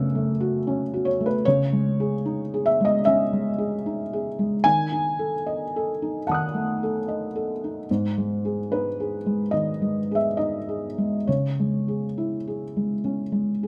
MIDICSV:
0, 0, Header, 1, 2, 480
1, 0, Start_track
1, 0, Key_signature, 4, "minor"
1, 0, Tempo, 784314
1, 888, Time_signature, 4, 2, 24, 8
1, 1852, Tempo, 808625
1, 5212, Tempo, 841515
1, 6172, Tempo, 882353
1, 7969, End_track
2, 0, Start_track
2, 0, Title_t, "Felt piano"
2, 0, Program_c, 0, 0
2, 0, Control_c, 0, 64, 127
2, 0, Note_on_c, 0, 42, 65
2, 0, Note_on_c, 0, 49, 47
2, 0, Note_on_c, 0, 57, 44
2, 0, Note_on_c, 0, 61, 57
2, 0, Note_on_c, 0, 66, 52
2, 0, Note_on_c, 0, 69, 86
2, 0, Note_on_c, 0, 71, 78
2, 92, Note_off_c, 0, 57, 0
2, 92, Note_on_c, 0, 57, 44
2, 189, Note_off_c, 0, 49, 0
2, 248, Note_off_c, 0, 66, 0
2, 248, Note_on_c, 0, 66, 50
2, 346, Note_off_c, 0, 57, 0
2, 411, Note_off_c, 0, 61, 0
2, 411, Note_on_c, 0, 61, 43
2, 503, Note_off_c, 0, 66, 0
2, 573, Note_on_c, 0, 66, 47
2, 643, Note_on_c, 0, 73, 72
2, 650, Note_off_c, 0, 69, 0
2, 665, Note_off_c, 0, 61, 0
2, 738, Note_on_c, 0, 57, 43
2, 766, Note_off_c, 0, 73, 0
2, 771, Note_off_c, 0, 71, 0
2, 771, Note_on_c, 0, 71, 68
2, 826, Note_off_c, 0, 66, 0
2, 889, Note_off_c, 0, 71, 0
2, 889, Note_on_c, 0, 73, 91
2, 893, Note_off_c, 0, 57, 0
2, 897, Control_c, 0, 64, 0
2, 903, Note_off_c, 0, 42, 0
2, 903, Note_on_c, 0, 49, 68
2, 981, Control_c, 0, 64, 127
2, 1056, Note_on_c, 0, 56, 46
2, 1224, Note_on_c, 0, 68, 47
2, 1306, Note_off_c, 0, 56, 0
2, 1380, Note_on_c, 0, 63, 53
2, 1471, Note_off_c, 0, 68, 0
2, 1553, Note_on_c, 0, 68, 52
2, 1608, Note_off_c, 0, 73, 0
2, 1626, Note_on_c, 0, 76, 77
2, 1631, Note_off_c, 0, 63, 0
2, 1718, Note_on_c, 0, 56, 44
2, 1739, Note_off_c, 0, 76, 0
2, 1743, Note_on_c, 0, 75, 83
2, 1800, Note_off_c, 0, 68, 0
2, 1835, Note_off_c, 0, 49, 0
2, 1859, Note_off_c, 0, 75, 0
2, 1866, Note_on_c, 0, 76, 88
2, 1877, Note_on_c, 0, 61, 51
2, 1961, Note_off_c, 0, 56, 0
2, 2032, Note_on_c, 0, 56, 39
2, 2120, Note_off_c, 0, 61, 0
2, 2183, Note_on_c, 0, 68, 44
2, 2277, Note_off_c, 0, 56, 0
2, 2347, Note_on_c, 0, 63, 46
2, 2432, Note_off_c, 0, 68, 0
2, 2509, Note_on_c, 0, 68, 43
2, 2593, Note_off_c, 0, 63, 0
2, 2661, Note_on_c, 0, 56, 43
2, 2754, Note_off_c, 0, 68, 0
2, 2809, Note_on_c, 0, 80, 102
2, 2814, Note_off_c, 0, 56, 0
2, 2815, Note_off_c, 0, 76, 0
2, 2818, Control_c, 0, 64, 0
2, 2819, Note_on_c, 0, 51, 58
2, 2931, Control_c, 0, 64, 127
2, 2977, Note_on_c, 0, 63, 45
2, 3137, Note_on_c, 0, 69, 43
2, 3230, Note_off_c, 0, 63, 0
2, 3300, Note_on_c, 0, 75, 49
2, 3390, Note_off_c, 0, 69, 0
2, 3476, Note_on_c, 0, 69, 46
2, 3551, Note_off_c, 0, 75, 0
2, 3630, Note_on_c, 0, 63, 39
2, 3719, Note_off_c, 0, 69, 0
2, 3752, Note_off_c, 0, 51, 0
2, 3771, Note_off_c, 0, 80, 0
2, 3777, Note_on_c, 0, 78, 64
2, 3784, Note_on_c, 0, 81, 36
2, 3790, Note_on_c, 0, 51, 49
2, 3805, Note_on_c, 0, 87, 39
2, 3822, Note_on_c, 0, 90, 37
2, 3876, Note_off_c, 0, 63, 0
2, 3939, Note_on_c, 0, 57, 34
2, 4110, Note_on_c, 0, 69, 44
2, 4192, Note_off_c, 0, 57, 0
2, 4261, Note_on_c, 0, 75, 41
2, 4358, Note_off_c, 0, 69, 0
2, 4421, Note_on_c, 0, 69, 43
2, 4513, Note_off_c, 0, 75, 0
2, 4591, Note_on_c, 0, 63, 41
2, 4674, Note_off_c, 0, 69, 0
2, 4716, Note_off_c, 0, 81, 0
2, 4720, Note_off_c, 0, 51, 0
2, 4727, Note_off_c, 0, 87, 0
2, 4735, Note_off_c, 0, 90, 0
2, 4737, Note_off_c, 0, 78, 0
2, 4742, Note_off_c, 0, 63, 0
2, 4744, Control_c, 0, 64, 0
2, 4750, Note_on_c, 0, 44, 50
2, 4825, Control_c, 0, 64, 127
2, 4910, Note_on_c, 0, 56, 35
2, 5071, Note_on_c, 0, 68, 36
2, 5158, Note_off_c, 0, 56, 0
2, 5229, Note_on_c, 0, 71, 64
2, 5239, Note_on_c, 0, 63, 42
2, 5316, Note_off_c, 0, 68, 0
2, 5391, Note_on_c, 0, 68, 43
2, 5476, Note_off_c, 0, 63, 0
2, 5540, Note_on_c, 0, 56, 37
2, 5632, Note_off_c, 0, 68, 0
2, 5670, Note_off_c, 0, 44, 0
2, 5683, Note_on_c, 0, 75, 71
2, 5693, Note_off_c, 0, 71, 0
2, 5695, Note_on_c, 0, 51, 37
2, 5788, Note_off_c, 0, 56, 0
2, 5856, Note_on_c, 0, 56, 34
2, 5948, Note_off_c, 0, 51, 0
2, 6026, Note_on_c, 0, 68, 38
2, 6048, Note_on_c, 0, 76, 62
2, 6049, Note_off_c, 0, 75, 0
2, 6113, Note_off_c, 0, 56, 0
2, 6173, Note_off_c, 0, 76, 0
2, 6173, Note_on_c, 0, 75, 60
2, 6179, Note_on_c, 0, 63, 37
2, 6278, Note_off_c, 0, 68, 0
2, 6345, Note_on_c, 0, 68, 32
2, 6433, Note_off_c, 0, 63, 0
2, 6505, Note_on_c, 0, 56, 35
2, 6599, Note_off_c, 0, 68, 0
2, 6659, Note_off_c, 0, 75, 0
2, 6664, Note_off_c, 0, 56, 0
2, 6664, Note_on_c, 0, 73, 58
2, 6670, Note_on_c, 0, 49, 44
2, 6671, Control_c, 0, 64, 0
2, 6755, Control_c, 0, 64, 127
2, 6839, Note_on_c, 0, 56, 34
2, 6995, Note_on_c, 0, 68, 29
2, 7090, Note_off_c, 0, 56, 0
2, 7155, Note_on_c, 0, 64, 39
2, 7246, Note_off_c, 0, 68, 0
2, 7317, Note_on_c, 0, 68, 35
2, 7405, Note_off_c, 0, 64, 0
2, 7475, Note_on_c, 0, 56, 30
2, 7564, Note_off_c, 0, 68, 0
2, 7604, Note_off_c, 0, 49, 0
2, 7628, Note_on_c, 0, 61, 34
2, 7720, Note_off_c, 0, 56, 0
2, 7777, Note_on_c, 0, 56, 30
2, 7875, Note_off_c, 0, 61, 0
2, 7947, Note_on_c, 0, 68, 31
2, 7969, Note_off_c, 0, 56, 0
2, 7969, Note_off_c, 0, 68, 0
2, 7969, Note_off_c, 0, 73, 0
2, 7969, End_track
0, 0, End_of_file